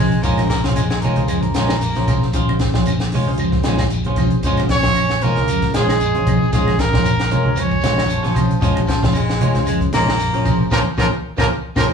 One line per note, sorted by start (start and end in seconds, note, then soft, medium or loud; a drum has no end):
0.00 0.20 A#1 medium
0.00 0.12 F3 medium
0.00 0.24 G#3 loud
0.00 0.14 C#4 medium
0.00 0.15 F4 medium
0.00 0.15 G#4 medium
0.00 0.15 C5 medium
0.12 closed hi-hat soft
0.12 shekere soft
0.23 0.72 A#1 loud
0.23 0.39 D#3 medium
0.23 0.41 G#3 medium
0.23 0.49 A#3 loud
0.23 0.41 C#4 medium
0.23 0.80 C#4 medium
0.23 0.80 F4 medium
0.23 0.41 F4 medium
0.23 0.80 G#4 medium
0.23 0.80 C5 loud
0.23 kick medium
0.23 closed hi-hat medium
0.23 shekere loud
0.37 snare soft
0.37 closed hi-hat soft
0.37 high conga loud
0.37 claves medium
0.37 shekere soft
0.49 0.61 A#3 loud
0.49 kick medium
0.49 snare medium
0.49 closed hi-hat soft
0.49 shekere medium
0.64 0.79 F3 medium
0.64 0.80 C#4 soft
0.64 0.79 F4 medium
0.64 kick medium
0.64 snare medium
0.64 closed hi-hat soft
0.64 high conga medium
0.64 low conga medium
0.64 shekere soft
0.75 1.00 A#1 loud
0.75 0.89 G#3 loud
0.75 closed hi-hat medium
0.75 claves medium
0.75 shekere medium
0.90 1.02 G#3 medium
0.90 snare medium
0.90 closed hi-hat soft
1.01 1.17 D#3 medium
1.01 1.20 G#3 medium
1.01 1.29 A#3 medium
1.01 1.20 C#4 medium
1.01 closed hi-hat soft
1.01 high conga medium
1.01 low conga medium
1.01 shekere medium
1.05 1.21 F4 medium
1.16 1.52 C#2 loud
1.16 1.64 C#4 medium
1.16 1.64 F4 medium
1.16 1.64 G#4 medium
1.16 1.64 C5 loud
1.16 closed hi-hat soft
1.16 shekere soft
1.28 1.43 F3 medium
1.28 1.43 G#3 medium
1.28 closed hi-hat medium
1.28 claves medium
1.28 shekere medium
1.42 2.47 A#3 loud
1.42 kick medium
1.42 closed hi-hat soft
1.42 shekere soft
1.54 1.92 A#1 medium
1.54 1.73 G#3 medium
1.54 1.73 C#4 medium
1.54 1.73 F4 medium
1.54 snare medium
1.54 closed hi-hat medium
1.54 high conga loud
1.54 shekere medium
1.69 1.84 D#3 medium
1.69 snare medium
1.69 claves medium
1.69 shekere soft
1.81 closed hi-hat medium
1.81 shekere medium
1.95 2.30 A#1 medium
1.95 2.03 C#4 medium
1.95 2.12 C#4 soft
1.95 2.03 F4 medium
1.95 2.11 F4 medium
1.95 2.03 G#4 medium
1.95 2.03 C5 loud
1.95 snare soft
1.95 closed hi-hat soft
1.95 high conga medium
1.95 shekere soft
2.07 2.22 F3 medium
2.07 2.25 C#4 medium
2.07 2.25 F4 medium
2.07 2.25 G#4 medium
2.07 2.25 C5 medium
2.07 kick medium
2.07 closed hi-hat medium
2.07 low conga medium
2.07 claves medium
2.07 shekere medium
2.22 snare soft
2.22 shekere soft
2.33 2.82 A#1 medium
2.33 2.49 D#3 medium
2.33 2.89 C#4 medium
2.33 2.89 F4 medium
2.33 2.51 F4 medium
2.33 2.89 G#4 medium
2.33 2.89 C5 loud
2.33 muted clean electric guitar stroke medium
2.33 kick medium
2.33 closed hi-hat medium
2.33 shekere medium
2.48 high conga loud
2.48 claves medium
2.48 shekere soft
2.59 kick medium
2.59 snare medium
2.59 closed hi-hat soft
2.59 shekere medium
2.74 2.89 F3 medium
2.74 2.90 C#4 soft
2.74 2.90 F4 medium
2.74 kick medium
2.74 snare medium
2.74 shekere soft
2.86 3.10 A#1 medium
2.86 closed hi-hat medium
2.86 high conga medium
2.86 claves medium
2.86 shekere medium
3.00 snare medium
3.00 closed hi-hat soft
3.00 shekere soft
3.12 3.27 D#3 medium
3.12 3.30 G#3 medium
3.12 3.30 C#4 medium
3.12 3.30 F4 medium
3.12 open hi-hat medium
3.12 high conga medium
3.12 low conga medium
3.12 shekere medium
3.27 3.62 C#2 loud
3.27 3.73 C#4 loud
3.27 3.73 F4 medium
3.27 3.74 G#4 medium
3.27 3.74 C5 loud
3.27 shekere soft
3.38 3.53 F3 medium
3.38 closed hi-hat medium
3.38 claves medium
3.38 shekere medium
3.52 kick medium
3.52 snare soft
3.52 shekere soft
3.63 4.02 A#1 loud
3.63 3.82 G#3 medium
3.63 3.82 C#4 medium
3.63 3.82 F4 medium
3.63 snare medium
3.63 closed hi-hat soft
3.63 high conga loud
3.63 shekere medium
3.78 3.94 D#3 medium
3.78 kick medium
3.78 snare medium
3.78 claves medium
3.78 shekere soft
3.90 closed hi-hat medium
3.90 shekere medium
4.04 4.40 A#1 medium
4.04 4.13 C#4 medium
4.04 4.21 C#4 medium
4.04 4.21 F4 medium
4.04 4.13 F4 medium
4.04 4.13 G#4 medium
4.04 4.13 C5 medium
4.04 closed hi-hat soft
4.04 high conga medium
4.04 shekere soft
4.16 4.32 F3 medium
4.16 4.34 C#4 medium
4.16 4.34 F4 medium
4.16 4.34 G#4 medium
4.16 4.34 C5 medium
4.16 kick medium
4.16 closed hi-hat soft
4.16 high conga medium
4.16 low conga medium
4.16 claves medium
4.16 shekere medium
4.30 closed hi-hat soft
4.30 shekere soft
4.43 4.92 A#1 medium
4.43 4.61 G#3 medium
4.43 4.99 C#4 medium
4.43 4.61 C#4 medium
4.43 4.99 F4 medium
4.43 4.61 F4 medium
4.43 4.99 G#4 medium
4.43 4.99 C5 loud
4.43 muted clean electric guitar stroke medium
4.43 kick medium
4.43 closed hi-hat medium
4.43 shekere loud
4.57 closed hi-hat soft
4.57 high conga loud
4.57 claves medium
4.57 shekere soft
4.69 5.25 C#4 medium
4.69 5.24 C#5 loud
4.69 kick medium
4.69 snare medium
4.69 closed hi-hat soft
4.69 shekere medium
4.83 4.99 F3 medium
4.83 5.00 C#4 soft
4.83 4.99 F4 soft
4.83 kick medium
4.83 snare medium
4.83 closed hi-hat soft
4.83 shekere soft
4.95 5.21 A#1 medium
4.95 closed hi-hat medium
4.95 high conga medium
4.95 claves medium
4.95 shekere medium
5.09 snare medium
5.09 closed hi-hat soft
5.09 shekere soft
5.21 5.37 D#3 medium
5.21 5.39 G#3 soft
5.21 5.75 A#3 medium
5.21 5.39 C#4 medium
5.21 5.40 F4 medium
5.21 5.74 A#4 medium
5.21 closed hi-hat medium
5.21 high conga medium
5.21 low conga medium
5.21 shekere medium
5.36 5.71 C#2 loud
5.36 5.83 C#4 medium
5.36 5.83 F4 medium
5.36 5.83 G#4 medium
5.36 5.83 C5 medium
5.36 snare soft
5.36 closed hi-hat soft
5.36 shekere soft
5.48 5.63 F3 medium
5.48 closed hi-hat medium
5.48 claves medium
5.48 shekere medium
5.62 kick medium
5.62 snare soft
5.62 closed hi-hat soft
5.62 shekere soft
5.74 6.11 A#1 medium
5.74 5.91 G#3 medium
5.74 6.50 G#3 medium
5.74 5.92 C#4 medium
5.74 5.92 F4 medium
5.74 6.49 G#4 medium
5.74 snare medium
5.74 closed hi-hat medium
5.74 high conga loud
5.74 shekere medium
5.89 6.04 D#3 medium
5.89 snare medium
5.89 claves medium
6.00 closed hi-hat medium
6.00 shekere loud
6.14 6.50 A#1 medium
6.14 6.22 C#4 medium
6.14 6.31 C#4 soft
6.14 6.22 F4 medium
6.14 6.30 F4 soft
6.14 6.22 G#4 medium
6.14 6.22 C5 medium
6.14 closed hi-hat soft
6.14 high conga medium
6.14 shekere soft
6.27 6.42 F3 medium
6.27 6.43 C#4 medium
6.27 6.43 F4 medium
6.27 6.43 G#4 medium
6.27 6.44 C5 medium
6.27 kick medium
6.27 closed hi-hat medium
6.27 low conga medium
6.27 claves medium
6.27 shekere medium
6.42 shekere soft
6.52 7.01 A#1 medium
6.52 6.68 D#3 medium
6.52 6.70 G#3 medium
6.52 6.81 G#3 medium
6.52 7.08 C#4 medium
6.52 6.70 C#4 medium
6.52 7.08 F4 medium
6.52 6.70 F4 medium
6.52 6.82 G#4 medium
6.52 7.08 G#4 medium
6.52 7.08 C5 medium
6.52 kick medium
6.52 snare soft
6.52 closed hi-hat medium
6.52 shekere medium
6.67 snare soft
6.67 high conga loud
6.67 claves medium
6.67 shekere soft
6.79 7.31 A#3 medium
6.79 7.32 A#4 loud
6.79 kick medium
6.79 snare medium
6.79 closed hi-hat medium
6.79 shekere medium
6.93 7.09 F3 medium
6.93 7.09 C#4 soft
6.93 7.08 F4 soft
6.93 kick medium
6.93 snare medium
6.93 high conga medium
6.93 low conga medium
6.93 shekere soft
7.04 7.29 A#1 loud
7.04 closed hi-hat medium
7.04 claves medium
7.04 shekere medium
7.19 snare medium
7.19 closed hi-hat soft
7.19 shekere soft
7.30 7.47 G#3 soft
7.30 7.59 A#3 medium
7.30 7.48 C#4 medium
7.30 7.48 F4 medium
7.30 7.61 A#4 medium
7.30 muted clean electric guitar stroke medium
7.30 closed hi-hat medium
7.30 high conga medium
7.30 low conga medium
7.30 shekere medium
7.44 7.80 C#2 loud
7.44 7.92 C#4 medium
7.44 7.92 F4 medium
7.44 7.92 G#4 medium
7.44 7.92 C#5 medium
7.44 shekere soft
7.56 7.73 F3 medium
7.56 8.36 C#4 medium
7.56 closed hi-hat medium
7.56 claves medium
7.56 shekere loud
7.60 8.37 C#5 medium
7.70 kick medium
7.70 shekere soft
7.81 8.20 A#1 medium
7.81 8.00 G#3 medium
7.81 8.00 C#4 medium
7.81 8.01 F4 medium
7.81 snare medium
7.81 closed hi-hat medium
7.81 high conga loud
7.81 shekere medium
7.96 8.13 D#3 medium
7.96 snare medium
7.96 claves medium
7.96 shekere soft
8.04 8.11 F#3 medium
8.08 8.87 F3 medium
8.08 closed hi-hat medium
8.08 shekere medium
8.23 8.59 A#1 medium
8.23 8.31 C#4 medium
8.23 8.39 C#4 soft
8.23 8.38 F4 medium
8.23 8.31 F4 medium
8.23 8.31 G#4 medium
8.23 8.31 C5 medium
8.23 snare soft
8.23 closed hi-hat soft
8.23 high conga medium
8.23 shekere soft
8.34 8.50 F3 medium
8.34 8.52 C#4 loud
8.34 8.52 F4 medium
8.34 8.52 G#4 medium
8.34 8.52 C5 loud
8.34 kick medium
8.34 closed hi-hat soft
8.34 low conga medium
8.34 claves medium
8.34 shekere medium
8.50 closed hi-hat soft
8.50 shekere soft
8.61 9.11 A#1 medium
8.61 8.77 A#2 medium
8.61 8.78 G#3 medium
8.61 9.17 C#4 medium
8.61 8.79 C#4 medium
8.61 9.17 F4 medium
8.61 8.79 F4 medium
8.61 9.17 G#4 medium
8.61 9.17 C5 medium
8.61 kick medium
8.61 snare soft
8.61 closed hi-hat medium
8.61 shekere medium
8.76 closed hi-hat soft
8.76 high conga medium
8.76 claves medium
8.87 9.00 F3 medium
8.87 kick medium
8.87 snare medium
8.87 closed hi-hat soft
8.87 shekere medium
9.02 9.18 F3 medium
9.02 9.18 C#4 soft
9.02 9.18 F4 medium
9.02 kick medium
9.02 snare medium
9.02 closed hi-hat soft
9.02 low conga medium
9.02 shekere soft
9.12 9.38 A#1 loud
9.12 9.64 G#3 loud
9.12 closed hi-hat medium
9.12 claves medium
9.12 shekere medium
9.27 snare medium
9.27 closed hi-hat soft
9.27 shekere soft
9.40 9.56 D#3 medium
9.40 9.58 G#3 medium
9.40 9.58 C#4 medium
9.40 9.58 F4 medium
9.40 closed hi-hat soft
9.40 high conga medium
9.40 low conga medium
9.40 shekere medium
9.54 9.89 C#2 loud
9.54 10.02 C#4 medium
9.54 10.02 F4 medium
9.54 10.02 G#4 medium
9.54 10.02 C5 loud
9.54 snare soft
9.54 closed hi-hat soft
9.54 shekere soft
9.66 9.82 F3 medium
9.66 9.79 G#3 medium
9.66 closed hi-hat medium
9.66 claves medium
9.66 shekere medium
9.81 kick medium
9.81 closed hi-hat soft
9.81 shekere soft
9.92 10.30 A#1 medium
9.92 10.10 G#3 medium
9.92 10.68 A#3 loud
9.92 10.11 C#4 medium
9.92 10.11 F4 medium
9.92 snare medium
9.92 closed hi-hat medium
9.92 high conga loud
9.92 shekere medium
10.06 10.21 D#3 medium
10.06 snare medium
10.06 claves medium
10.06 shekere soft
10.18 closed hi-hat medium
10.18 shekere medium
10.33 10.69 A#1 medium
10.33 10.41 C#4 medium
10.33 10.49 C#4 medium
10.33 10.41 F4 medium
10.33 10.49 F4 medium
10.33 10.41 G#4 medium
10.33 10.41 C5 loud
10.33 closed hi-hat soft
10.33 high conga medium
10.33 shekere soft
10.45 10.60 F3 medium
10.45 10.62 C#4 medium
10.45 10.62 F4 medium
10.45 10.62 G#4 medium
10.45 10.62 C5 medium
10.45 kick medium
10.45 closed hi-hat soft
10.45 low conga medium
10.45 claves medium
10.45 shekere medium
10.59 shekere soft
10.71 10.82 A#1 medium
10.71 10.81 A#2 medium
10.71 10.81 C#3 medium
10.71 10.80 F3 medium
10.71 10.81 A#3 loud
10.71 10.80 A#3 medium
10.71 10.81 C#4 medium
10.71 10.81 F4 medium
10.71 10.80 G#4 medium
10.71 10.80 A#4 loud
10.71 10.79 A#4 medium
10.71 kick medium
10.71 snare medium
10.71 high conga medium
10.71 claves medium
10.71 shekere loud
10.97 11.08 A#1 loud
10.97 11.07 A#2 medium
10.97 11.07 C#3 medium
10.97 11.07 F3 medium
10.97 11.05 F3 loud
10.97 11.07 A#3 medium
10.97 11.06 A#3 medium
10.97 11.07 C#4 medium
10.97 11.07 F4 medium
10.97 11.07 G#4 medium
10.97 11.07 A#4 medium
10.97 kick medium
10.97 snare medium
10.97 high conga loud
10.97 claves medium
10.97 shekere medium
11.37 11.47 A#1 medium
11.37 11.46 A#2 medium
11.37 11.46 C#3 medium
11.37 11.46 F3 loud
11.37 11.44 F3 medium
11.37 11.46 A#3 medium
11.37 11.46 A#3 loud
11.37 11.46 C#4 loud
11.37 11.46 F4 medium
11.37 11.46 F4 loud
11.37 11.46 G#4 medium
11.37 11.47 A#4 loud
11.37 11.47 A#4 medium
11.37 kick medium
11.37 snare medium
11.37 high conga medium
11.37 claves loud
11.37 shekere medium
11.76 11.87 A#1 medium
11.76 11.85 A#2 medium
11.76 11.85 C#3 loud
11.76 11.85 F3 medium
11.76 11.84 F3 medium
11.76 11.84 A#3 medium
11.76 11.86 A#3 loud
11.76 11.86 C#4 loud
11.76 11.86 F4 medium
11.76 11.85 G#4 medium
11.76 11.85 A#4 medium
11.76 kick medium
11.76 snare medium
11.76 high conga loud
11.76 claves loud
11.76 shekere medium